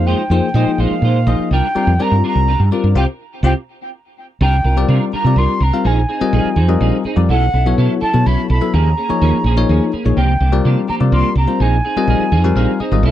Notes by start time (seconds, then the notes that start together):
Already playing: F2 F3 A#3 D#4 G#4 C5
0.06 G#3 D#4 F4 C5 G5
0.30 F2 F3 A#3 D#4 F4 G#4 C5
0.54 A#2 F3 G#3 A#3 D#4 F4 G#4 C5 D#5
0.66 muted fretless electric bass stroke
0.78 A#1 G#3 D#4 F4 C5 F5
0.91 muted fretless electric bass stroke
1.02 A#2 G#3 D#4 F4 C5
1.27 A#1 F3 A#3 D#4 F4 G#4 C5 D#5
1.39 muted fretless electric bass stroke
1.51 C2 G3 D4 F4 A#4 G5
1.75 G3 C4 D4 F4 A#4 D5, muted fretless electric bass stroke
1.87 F2
1.99 G3 C4 D4 F4 A#4 D5 A#5
2.11 G2
2.24 G3 D4 F4 A#4 A#5
2.35 C2
2.48 G3 D4 F4 A#4
2.60 G2
2.71 G3 C4 D4 F4 A#4 D5
2.84 G2
2.95 C2 C4 F4 G4 G5
3.43 C2 C4 F4 G4 G5
4.41 C2 G3 D4 F4 A#4 G5
4.64 C2 D4 F4 A#4
4.77 G3 C4 F4 A#4 D5
4.88 C3 G3 D4 F4 A#4
5.13 G3 D4 F4 A#4 A#5, muted fretless electric bass stroke
5.24 C3 G3 C4 F4 A#4 D5
5.36 C2 G3 D4 F4 A#4 C6
5.61 C2 D4 F4 A#4 A#5
5.73 G3 C4 F4 A#4 F5
5.85 A#1 F3 C4 D#4 G#4 G#5
6.09 C4 D#4 G#4
6.21 G3 C4 F4 A#4 D#5, muted fretless electric bass stroke
6.33 A#1 F3 C4 D#4 G#4
6.56 F2 F3 C4 D#4 G#4
6.68 G3 C4 F4 A#4 D#5
6.81 A#1 F3 C4 D#4 G#4
7.05 C4 D#4 G#4, muted fretless electric bass stroke
7.16 F2 G3 C4 F4 A#4 D5
7.29 B1 F#3 C#4 E4 A4 F#5
7.54 B1 C#4 E4 A4
7.66 F#3 B3 E4 A4 C#5
7.78 B2 F#3 C#4 E4 A4
8.01 F#3 C#4 E4 A4 A5, muted fretless electric bass stroke
8.13 B2 F#3 B3 E4 A4 C#5
8.26 B1 F#3 C#4 E4 A4 B5
8.50 B1 C#4 E4 A4 B5
8.61 F#3 B3 E4 A4 E5
8.73 D#2 F3 A#3 C#4 G#4 A#5
8.97 A#3 C#4 G#4
9.09 F3 A#3 D#4 G#4 C#5, muted fretless electric bass stroke
9.21 D#2 F3 A#3 C#4 G#4
9.34 muted fretless electric bass stroke
9.44 A#1 F3 A#3 C#4 G#4
9.57 F3 A#3 D#4 G#4 C#5
9.69 D#2 F3 A#3 C#4 G#4
9.93 A#3 C#4 G#4, muted fretless electric bass stroke
10.05 A#1 F3 A#3 D#4 G#4 C#5
10.16 C2 F3 A#3 D4 G4 G5
10.40 C2 A#3 D4 G4
10.52 G3 C4 F4 A#4 D5
10.65 C3 F3 A#3 D4 G4
10.88 F3 A#3 D4 G4 A#5, muted fretless electric bass stroke
11.00 C3 G3 C4 F4 A#4 D5
11.12 C2 F3 A#3 D4 G4 C6
11.36 C2 A#3 D4 G4 A#5
11.47 G3 C4 F4 A#4 C5
11.60 A#1 F3 C4 D#4 G#4 G#5
11.85 C4 D#4 G#4
11.96 G3 C4 F4 A#4 D#5, muted fretless electric bass stroke
12.08 A#1 F3 C4 D#4 G#4
12.20 muted fretless electric bass stroke
12.32 F2 F3 C4 D#4 G#4
12.44 G3 C4 F4 A#4 F5
12.55 A#1 F3 C4 D#4 G#4 F5
12.80 C4 D#4 G#4 D#5, muted fretless electric bass stroke
12.91 G#1 G3 C4 F4 A#4 D#5
13.03 B1 F#3 C#4 E4 A4 E5